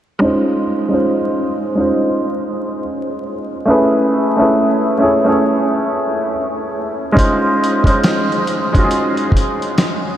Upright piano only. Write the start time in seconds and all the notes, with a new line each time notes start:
0.19 G#3 C#4 D#4 F4
0.24 C5
0.89 G#3 C#4 D#4 F4
0.94 C5
1.75 G#3 C#4 D#4 F4
1.80 C5
3.65 A3 C#4 E4 G#4
3.70 B4
4.36 A3 C#4 E4
4.41 G#4 B4
4.98 A3 C#4 E4 G#4
5.03 C#5
5.24 A3 C#4 E4 G#4
5.29 C#5
7.12 G#3 C#4 D#4 F4
7.18 C5
7.85 G#3 C#4 D#4 F4
7.89 C5
8.73 G#3 C#4 D#4
8.77 F4 F#4
8.84 G#4